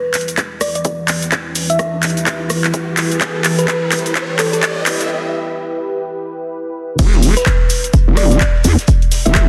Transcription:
Already playing: analog synth pad E3 E4 G4 B4, riser
0.14 clap, open hi-hat, shaker
0.21 closed hi-hat
0.28 closed hi-hat, shaker
0.37 kick, clap, closed hi-hat, shaker
0.61 synth pluck D5, cross-stick, open hi-hat, shaker
0.75 synth pluck D5, closed hi-hat, shaker
0.85 kick, closed hi-hat, shaker
1.08 clap, open hi-hat, shaker
1.22 closed hi-hat, shaker
1.32 kick, clap, closed hi-hat, shaker
1.55 open hi-hat, shaker
1.70 synth pluck E5, closed hi-hat, shaker
1.79 kick, cross-stick, closed hi-hat, shaker
2.03 clap, open hi-hat, shaker
2.10 closed hi-hat
2.17 closed hi-hat, shaker
2.26 kick, clap, closed hi-hat, shaker
2.50 cross-stick, open hi-hat, shaker
2.64 clap, closed hi-hat, shaker
2.74 kick, closed hi-hat, shaker
2.97 clap, open hi-hat, shaker
3.11 closed hi-hat, shaker
3.21 kick, clap, closed hi-hat, shaker
3.44 clap, open hi-hat, shaker
3.59 synth pluck B4, closed hi-hat, shaker
3.68 synth pluck B4, kick, clap, closed hi-hat, shaker
3.92 clap, open hi-hat, shaker
3.99 closed hi-hat
4.06 closed hi-hat, shaker
4.15 kick, clap, closed hi-hat, shaker
4.39 synth pluck A4, clap, open hi-hat, shaker
4.53 synth pluck A4, closed hi-hat, shaker
4.63 kick, clap, closed hi-hat, shaker
4.86 clap, open hi-hat, shaker
5.01 closed hi-hat, shaker
6.99 wobble bass E1, analog synth pad E4 G4 B4, kick, closed hi-hat, crash, shaker
7.13 snare, closed hi-hat
7.23 open hi-hat, shaker
7.37 synth pluck B4, snare, closed hi-hat, shaker
7.46 synth pluck B4, kick, cross-stick, snare, clap, closed hi-hat, shaker
7.70 open hi-hat, shaker
7.84 closed hi-hat, shaker
7.93 kick, closed hi-hat, shaker
8.08 wobble bass E1
8.17 synth pluck D5, cross-stick, open hi-hat, shaker
8.31 synth pluck D5, snare, closed hi-hat, shaker
8.40 kick, snare, clap, closed hi-hat, shaker
8.54 snare
8.64 wobble bass E2, open hi-hat, shaker
8.79 snare, closed hi-hat, shaker
8.88 kick, closed hi-hat, shaker
9.02 closed hi-hat
9.11 snare, open hi-hat, shaker
9.26 wobble bass E1, synth pluck E5, snare, closed hi-hat, shaker
9.35 kick, cross-stick, snare, clap, closed hi-hat, shaker

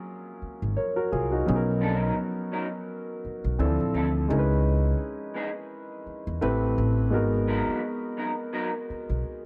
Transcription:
Already playing: grand piano F#3 A#3 C#4 F4 G#4
0.42 muted upright bass stroke
0.62 upright bass G#1
0.77 grand piano A#4 C#5
0.96 grand piano F#4 A#4
1.12 upright bass C2, grand piano F4 G#4
1.32 grand piano D#4 F#4
1.46 upright bass B1, grand piano F#3 B3 C#4 D#4 G#4
1.55 grand piano A#4
1.81 clean electric guitar F3 C4 D4 A4
1.95 clean electric guitar F#3 C#4 D#4 A#4
2.52 clean electric guitar F#3 C#4 D#4 A#4
3.25 muted upright bass stroke
3.44 upright bass B1
3.59 upright bass D2, grand piano E3 C4 D4 E4 A4
3.65 grand piano F3
3.80 upright bass A1
3.94 upright bass D2, clean electric guitar F3 C4 E4 A4
4.28 upright bass C#2, grand piano G#3 C#4 D#4 E4 A#4
4.38 grand piano B4
5.34 clean electric guitar E3 B3 D#4 G#4
6.07 muted upright bass stroke
6.27 upright bass E2
6.41 upright bass A1, grand piano A3 C4 E4 G4 B4
6.78 upright bass A1
7.10 upright bass G#1, grand piano G#3 B3 D#4 F#4 A#4
7.48 clean electric guitar F#3 B3 D#4 A#4
7.69 muted upright bass stroke
8.17 clean electric guitar F#3 B3 D#4 A#4
8.53 clean electric guitar F#3 B3 D#4 A#4
8.90 muted upright bass stroke
9.09 upright bass B1

